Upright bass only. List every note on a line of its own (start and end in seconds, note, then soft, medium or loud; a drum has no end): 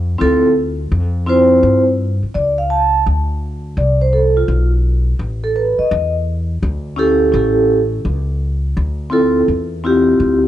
0.00 0.16 F2 medium
0.21 0.88 D2 medium
0.92 1.59 F2 medium
1.63 2.19 G2 medium
2.23 muted upright bass stroke soft
2.35 3.02 C#2 medium
3.06 3.74 D2 medium
3.77 4.45 C2 medium
4.48 5.16 B1 medium
5.19 5.75 A1 medium
5.79 muted upright bass stroke soft
5.91 6.59 E2 medium
6.63 7.30 D2 medium
7.34 8.01 A1 medium
8.05 8.73 C#2 medium
8.77 9.45 D2 medium
9.48 10.16 E2 medium
10.20 10.48 D2 medium